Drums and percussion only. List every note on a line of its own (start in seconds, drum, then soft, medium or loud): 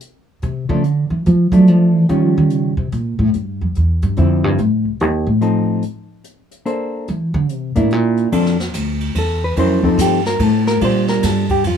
0.01 closed hi-hat soft
0.42 closed hi-hat soft
0.84 closed hi-hat soft
1.26 closed hi-hat soft
1.52 closed hi-hat soft
1.67 closed hi-hat soft
2.09 closed hi-hat soft
2.50 closed hi-hat soft
2.92 closed hi-hat soft
3.33 closed hi-hat soft
3.75 closed hi-hat soft
4.02 closed hi-hat soft
4.16 closed hi-hat soft
4.58 closed hi-hat soft
5.00 closed hi-hat soft
5.41 closed hi-hat soft
5.82 closed hi-hat soft
6.24 closed hi-hat soft
6.51 closed hi-hat soft
6.66 closed hi-hat soft
7.08 closed hi-hat soft
7.49 closed hi-hat soft
7.75 closed hi-hat soft
7.91 closed hi-hat soft
8.17 closed hi-hat soft
8.32 ride medium
8.46 snare soft
8.60 snare soft
8.74 hi-hat pedal medium
8.74 ride medium
9.00 ride soft
9.15 ride medium
9.57 ride medium
9.83 kick medium
9.99 hi-hat pedal medium
9.99 ride medium
10.26 snare soft
10.40 ride medium
10.67 snare soft
10.81 ride medium
11.08 snare medium
11.23 snare soft
11.23 hi-hat pedal soft
11.23 ride medium
11.49 kick medium
11.49 ride soft
11.64 ride medium